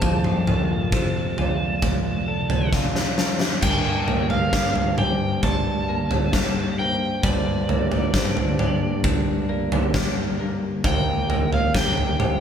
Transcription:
0.00 3.59 F2 medium
0.00 3.59 C3 medium
0.00 0.46 F3 medium
0.00 3.59 A#3 medium
0.00 1.81 F4 medium
0.00 0.47 C5 medium
0.00 2.69 A5 medium
0.00 kick medium
0.00 floor tom medium
0.24 mid tom medium
0.47 2.73 F3 soft
0.47 0.93 A#4 medium
0.47 floor tom medium
0.47 mid tom medium
0.92 1.82 C4 medium
0.92 1.38 C5 medium
0.92 kick medium
1.38 2.72 F4 soft
1.38 2.27 D5 medium
1.38 floor tom medium
1.82 3.63 C4 soft
1.82 3.61 D#4 medium
1.82 kick medium
1.82 floor tom medium
2.28 3.63 A4 medium
2.28 3.18 D5 medium
2.50 floor tom medium
2.72 3.63 F4 medium
2.72 kick medium
2.72 snare soft
2.95 snare soft
3.18 3.63 F3 medium
3.18 snare medium
3.40 snare medium
3.62 7.19 G2 medium
3.62 5.88 G2 medium
3.62 10.80 D3 medium
3.62 12.40 A#3 medium
3.62 10.81 G4 medium
3.62 4.06 A#4 medium
3.62 4.30 G5 medium
3.62 kick medium
3.62 floor tom medium
3.62 crash medium
4.08 5.88 A#3 soft
4.08 4.98 A#4 medium
4.08 floor tom medium
4.30 4.98 F5 medium
4.30 floor tom medium
4.53 5.42 D4 soft
4.53 kick medium
4.53 snare medium
4.75 floor tom medium
4.98 8.48 G4 medium
4.98 5.43 C5 medium
4.98 5.44 G5 medium
4.98 floor tom medium
4.98 mid tom medium
5.43 7.69 D4 medium
5.43 6.33 D5 medium
5.43 6.79 A5 medium
5.43 kick medium
5.43 floor tom medium
5.89 6.79 A#3 medium
6.11 floor tom medium
6.33 9.84 G3 medium
6.33 kick medium
6.33 snare medium
6.79 7.69 A#3 soft
6.79 7.69 C5 medium
6.79 7.25 G5 medium
7.23 10.80 G2 medium
7.23 9.49 G2 medium
7.23 9.00 D5 medium
7.23 kick medium
7.23 floor tom medium
7.69 9.48 A#3 medium
7.69 8.14 A#4 medium
7.69 floor tom medium
7.92 floor tom medium
8.14 9.03 D4 medium
8.14 8.59 C5 medium
8.14 kick medium
8.14 snare medium
8.37 floor tom medium
8.59 10.84 G4 medium
8.59 9.48 D5 medium
8.59 floor tom medium
8.59 mid tom medium
9.04 10.84 D4 medium
9.04 kick medium
9.04 floor tom medium
9.49 10.38 A#3 medium
9.49 10.39 D5 medium
9.72 floor tom medium
9.94 10.84 G3 medium
9.94 kick medium
9.94 snare medium
10.39 10.84 A#3 soft
10.84 12.40 D#2 medium
10.84 12.40 D#3 medium
10.84 12.40 G4 medium
10.84 11.29 A#4 medium
10.84 11.53 G5 medium
10.84 kick medium
10.84 floor tom medium
11.30 12.40 A#3 medium
11.30 12.20 A#4 medium
11.30 floor tom medium
11.53 11.76 F5 medium
11.53 floor tom medium
11.75 12.40 D#4 medium
11.75 12.40 G5 medium
11.75 kick medium
11.75 snare medium
11.98 floor tom medium
12.20 12.40 G4 medium
12.20 12.40 C5 medium
12.20 floor tom medium
12.20 mid tom medium

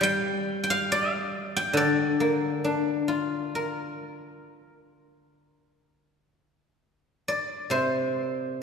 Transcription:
0.00 2.64 G3 medium
0.00 0.70 F5 medium
0.00 0.63 G5 loud
0.64 1.56 G5 medium
0.70 0.91 F5 loud
0.92 2.59 F5 loud
1.56 3.12 G5 loud
1.73 4.44 D3 medium
1.73 6.28 D5 medium
2.20 4.00 A#3 medium
2.64 4.46 D4 medium
3.08 4.91 F4 medium
3.55 5.38 A#4 medium
7.28 8.63 D5 medium
7.70 8.63 C3 soft
7.70 8.15 C5 medium
8.15 8.26 B4 medium
8.26 8.63 A#4 medium

